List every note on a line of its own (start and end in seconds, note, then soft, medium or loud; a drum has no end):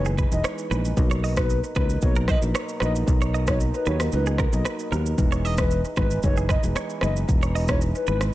0.00 0.24 F#1 loud
0.00 0.11 E3 loud
0.00 0.93 E3 medium
0.00 0.12 G#3 medium
0.00 0.93 G#3 medium
0.00 0.12 B3 medium
0.00 0.12 D#4 loud
0.00 0.93 D#4 medium
0.05 0.14 G#4 medium
0.05 shaker soft
0.18 0.28 B4 medium
0.18 kick medium
0.18 shaker soft
0.31 0.42 E1 medium
0.31 0.68 E3 medium
0.31 0.68 G#3 medium
0.31 0.68 B3 medium
0.31 0.68 D#4 medium
0.31 0.43 D#5 medium
0.31 shaker medium
0.44 0.54 C#5 medium
0.44 cross-stick loud
0.44 shaker medium
0.58 shaker medium
0.70 0.92 A#1 loud
0.70 0.95 E3 medium
0.70 0.95 G#3 medium
0.70 0.95 B3 medium
0.70 0.95 D#4 medium
0.70 0.80 B4 medium
0.70 shaker medium
0.85 shaker medium
0.97 1.60 B1 loud
0.97 5.14 B2 medium
0.97 1.34 F#3 loud
0.97 1.34 A#3 medium
0.97 1.34 B3 medium
0.97 5.14 D#4 medium
0.97 1.34 D#4 loud
0.97 5.14 A#4 medium
0.97 kick loud
0.97 shaker medium
1.11 1.19 C#5 medium
1.11 shaker medium
1.24 1.33 D#5 medium
1.24 open hi-hat medium
1.24 shaker medium
1.36 1.56 F#3 medium
1.36 1.56 A#3 medium
1.36 1.56 B3 medium
1.36 1.56 D#4 medium
1.36 1.60 B4 medium
1.36 kick medium
1.36 cross-stick loud
1.36 shaker loud
1.50 shaker medium
1.64 shaker medium
1.75 1.97 C#2 loud
1.75 1.96 F#3 medium
1.75 1.96 A#3 medium
1.75 1.96 B3 medium
1.75 1.96 D#4 medium
1.75 1.85 B4 medium
1.75 1.99 B4 medium
1.75 kick medium
1.75 cross-stick loud
1.75 shaker medium
1.90 shaker medium
2.02 2.35 B1 loud
2.02 2.22 F#3 medium
2.02 2.22 A#3 medium
2.02 2.22 B3 medium
2.02 2.22 D#4 loud
2.02 2.14 C#5 medium
2.02 kick loud
2.02 shaker medium
2.16 2.29 A#4 medium
2.16 shaker medium
2.28 2.38 B4 medium
2.28 2.41 D#5 medium
2.28 kick medium
2.28 cross-stick loud
2.28 shaker soft
2.42 2.53 A#1 medium
2.42 2.78 F#3 medium
2.42 2.78 A#3 medium
2.42 2.78 B3 medium
2.42 2.78 D#4 medium
2.42 shaker medium
2.55 2.64 C#5 medium
2.55 cross-stick loud
2.55 shaker medium
2.69 shaker medium
2.80 3.03 A#1 medium
2.80 3.05 F#3 medium
2.80 3.05 A#3 medium
2.80 3.06 B3 medium
2.80 3.06 D#4 medium
2.80 2.91 B4 medium
2.80 2.93 D#5 medium
2.80 cross-stick medium
2.80 shaker medium
2.96 shaker medium
3.08 3.71 B1 loud
3.08 kick loud
3.08 shaker medium
3.21 3.30 C#5 medium
3.21 shaker medium
3.34 3.43 D#5 medium
3.34 shaker medium
3.47 3.67 F#3 medium
3.47 3.67 A#3 medium
3.47 3.67 B3 medium
3.47 3.67 D#4 medium
3.47 3.59 C#5 medium
3.47 kick medium
3.47 cross-stick loud
3.47 shaker medium
3.60 shaker medium
3.74 3.85 B4 medium
3.74 shaker medium
3.86 4.08 D#2 medium
3.86 4.06 F#3 medium
3.86 4.06 A#3 medium
3.86 4.06 B3 medium
3.86 4.06 D#4 medium
3.86 3.96 B4 medium
3.86 3.99 C#5 medium
3.86 shaker medium
4.00 cross-stick loud
4.00 shaker medium
4.12 4.45 C#2 medium
4.12 4.33 F#3 medium
4.12 4.33 A#3 medium
4.12 4.33 B3 medium
4.12 4.33 D#4 loud
4.12 4.25 B4 medium
4.12 shaker medium
4.26 4.35 G#4 medium
4.26 shaker medium
4.38 4.49 A#4 medium
4.38 kick medium
4.38 cross-stick medium
4.38 shaker medium
4.53 4.63 B1 medium
4.53 4.89 F#3 medium
4.53 4.89 A#3 medium
4.53 4.89 B3 medium
4.53 4.89 D#4 medium
4.53 4.64 D#5 medium
4.53 shaker medium
4.65 4.75 B4 medium
4.65 cross-stick medium
4.65 shaker medium
4.79 shaker medium
4.91 5.13 D#2 medium
4.91 5.16 F#3 medium
4.91 5.16 A#3 medium
4.91 5.16 B3 medium
4.91 5.16 D#4 medium
4.91 5.01 A#4 medium
4.91 shaker medium
5.06 shaker medium
5.18 5.81 E1 loud
5.18 5.55 E3 medium
5.18 8.34 E3 loud
5.18 5.55 G#3 medium
5.18 8.34 G#3 medium
5.18 5.55 B3 medium
5.18 8.34 D#4 medium
5.18 5.55 D#4 loud
5.18 kick loud
5.18 shaker medium
5.32 5.45 C#5 medium
5.32 shaker medium
5.45 5.54 D#5 medium
5.45 open hi-hat soft
5.45 shaker soft
5.57 5.77 E3 medium
5.57 5.77 G#3 medium
5.57 5.78 B3 medium
5.57 5.78 D#4 medium
5.57 5.81 B4 medium
5.57 kick loud
5.57 cross-stick loud
5.57 shaker medium
5.71 shaker medium
5.85 shaker medium
5.96 6.18 G#1 medium
5.96 6.17 E3 medium
5.96 6.17 G#3 medium
5.96 6.17 B3 medium
5.96 6.17 D#4 medium
5.96 6.07 B4 medium
5.96 6.20 B4 medium
5.96 kick medium
5.96 cross-stick loud
5.96 shaker medium
6.11 shaker medium
6.23 6.56 F#1 loud
6.23 6.43 E3 medium
6.23 6.43 G#3 medium
6.23 6.43 B3 medium
6.23 6.43 D#4 loud
6.23 6.35 C#5 medium
6.23 kick loud
6.23 shaker medium
6.37 6.46 G#4 medium
6.37 shaker soft
6.49 6.59 B4 medium
6.49 6.62 D#5 medium
6.49 kick medium
6.49 cross-stick loud
6.49 shaker soft
6.63 6.74 E1 medium
6.63 6.99 E3 medium
6.63 6.99 G#3 medium
6.63 6.99 B3 medium
6.63 6.99 D#4 medium
6.63 shaker medium
6.76 6.86 C#5 medium
6.76 cross-stick medium
6.76 shaker loud
6.90 shaker medium
7.01 7.24 F#1 loud
7.01 7.26 E3 medium
7.01 7.27 G#3 medium
7.01 7.27 B3 medium
7.01 7.27 D#4 medium
7.01 7.12 B4 medium
7.01 7.14 D#5 medium
7.01 cross-stick loud
7.01 shaker medium
7.16 shaker medium
7.29 7.92 E1 loud
7.29 kick loud
7.29 shaker medium
7.42 7.51 C#5 medium
7.42 shaker medium
7.55 7.64 D#5 medium
7.55 open hi-hat medium
7.55 shaker medium
7.68 7.88 E3 medium
7.68 7.88 G#3 medium
7.68 7.88 B3 medium
7.68 7.88 D#4 medium
7.68 7.80 C#5 medium
7.68 kick loud
7.68 cross-stick loud
7.68 shaker medium
7.81 shaker medium
7.95 8.06 B4 medium
7.95 shaker medium
8.07 8.29 G#1 medium
8.07 8.27 E3 medium
8.07 8.27 G#3 medium
8.07 8.27 B3 medium
8.07 8.28 D#4 medium
8.07 8.17 B4 medium
8.07 8.20 B4 medium
8.07 shaker medium
8.21 cross-stick loud
8.21 shaker medium